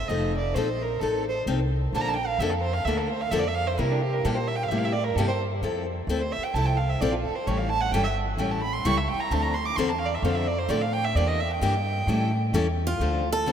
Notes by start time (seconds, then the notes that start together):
0.08 F1 F3 C4 D#4 A4 D#5
0.38 D5
0.54 A#1 F3 C4 D#4 A4 C5
0.82 A#4
1.00 A1 F3 C4 D#4 A4
1.29 C5
1.46 C2 F3 C4 D#4 A4
1.93 A#1 D3 F3 A#3 D4 A4 A5
2.01 A#5
2.08 A5
2.14 G5
2.27 F5
2.39 F2 D3 F3 A#3 D4 A4 E5
2.50 A4
2.60 C5
2.73 F5
2.85 D2 D3 F3 A#3 A4 E5
2.89 D4
2.98 A4
3.08 C5
3.21 F5
3.31 F2 D3 F3 A#3 D4 A4 E5
3.39 D5
3.47 E5
3.54 F5
3.67 C5
3.78 C3 G3 A#3 E4 G4 A#4
3.91 D4
4.02 G4
4.13 A#4
4.25 A#2 C3 G3 A#3 E4 G4 A4
4.35 C5
4.47 E5
4.56 G5
4.63 F5
4.68 A2 C3 G3 E5
4.72 A#3 E4 G4
4.78 F5
4.85 E5
4.92 D5
5.04 A#4
5.16 G2 C3 G3 A#3 E4 G4 A4
5.28 C5
5.62 F2 F3 C4 E4 A4
6.07 D2 F3 C4 E4 A4
6.19 C5
6.32 E5
6.38 muted upright bass stroke
6.43 G5
6.54 C2 F3 C4 E4 A4 A5
6.66 G5
6.77 F5
6.89 E5
7.01 A#1 F3 C4 E4 A4 D5
7.12 F4
7.22 A4
7.30 muted upright bass stroke
7.35 C5
7.47 A1 E3 G3 C#4 E4 A4 C#5
7.58 F5
7.69 A5
7.81 F#5
7.92 G1 E3 G3 C#4 E4 A4 G5
8.03 E5
8.37 A1 E3 G3 C#4 E4 A4 G5
8.51 A5
8.61 B5
8.73 C6
8.85 C#2 E3 G3 C#4 E4 A4 C#6
8.97 E5
9.08 G5
9.14 muted upright bass stroke
9.20 A#5
9.31 D2 D3 F3 C4 D4 A4 A5
9.42 A#5
9.54 C6
9.65 D6
9.76 E2 D3 F3 C4 D4 A4 C6
9.89 A5
9.99 F5
10.06 D5
10.14 E5
10.22 F2 D3 F3 C4 D4 A4 F5
10.35 E5
10.47 D5
10.59 C5
10.69 A2 D3 F3 C4 D4 A4 D5
10.81 F5
10.93 G5
11.04 E5
11.15 E2 E3 A#3 D4 G4 D5
11.28 D#5
11.40 E5
11.51 G5
11.61 G2 E3 A#3 D4 G4
12.07 A2 E3 G3 C#4 E4 A4
12.53 E2 E3 G3 C#4 E4 A4
12.87 F4
13.00 D2 D3 F3 C4 D4 A4
13.32 A4
13.46 D3 F3 C4 D4 A4